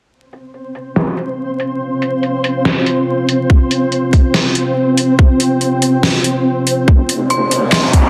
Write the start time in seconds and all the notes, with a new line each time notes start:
0.11 C4 F4 C5 F5
0.33 closed hi-hat
0.54 closed hi-hat
0.75 closed hi-hat
0.96 snare
1.17 closed hi-hat
1.60 closed hi-hat
2.02 closed hi-hat
2.23 closed hi-hat
2.44 closed hi-hat
2.65 snare
2.86 closed hi-hat
3.29 closed hi-hat
3.50 G5, kick
3.71 closed hi-hat
3.92 closed hi-hat
4.13 kick, closed hi-hat
4.34 snare
4.55 closed hi-hat
4.97 closed hi-hat
5.19 kick
5.40 closed hi-hat
5.61 closed hi-hat
5.82 closed hi-hat
6.03 snare
6.24 closed hi-hat
6.67 closed hi-hat
6.88 F1 C4 F4 C5 F5, kick, riser
7.09 closed hi-hat
7.30 C6, closed hi-hat
7.51 closed hi-hat
7.72 C6, snare, clap
7.93 kick, closed hi-hat